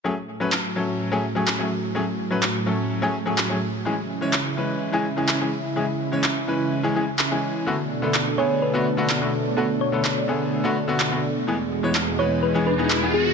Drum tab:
CP |--x---x-|--x---x-|--x---x-|--x---x-|

CP |--x---x-|--x---x-|--x---x-|